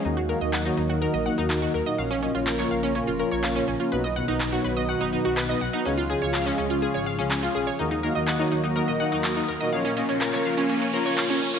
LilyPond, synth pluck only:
\new Staff \with { instrumentName = "Synth pluck" } { \time 4/4 \key ees \minor \tempo 4 = 124 ees'16 ges'16 bes'16 ees''16 ges''16 ees'16 ees'16 ges'16 bes'16 ees''16 ges''16 ees'16 ees'16 ges'16 bes'16 ees''16 | f''16 des'16 des'16 f'16 bes'16 des''16 f''16 des'16 des'16 f'16 bes'16 des''16 f''16 des'16 des'16 f'16 | b'16 dis''16 fis''16 dis'16 dis'16 fis'16 b'16 dis''16 fis''16 dis'16 dis'16 fis'16 b'16 dis''16 fis''16 dis'16 | des'16 f'16 aes'16 des''16 f''16 des'16 des'16 f'16 aes'16 des''16 f''16 des'16 des'16 f'16 aes'16 des''16 |
ees'16 ees'16 bes'16 ees''16 ges''16 ees'16 ees'16 ees'16 bes'16 ees''16 ges''16 ees'16 ees'16 ees'16 bes'16 ees''16 | f''16 des'16 des'16 des'16 bes'16 des''16 f''16 des'16 des'16 des'16 bes'16 des''16 f''16 des'16 des'16 des'16 | }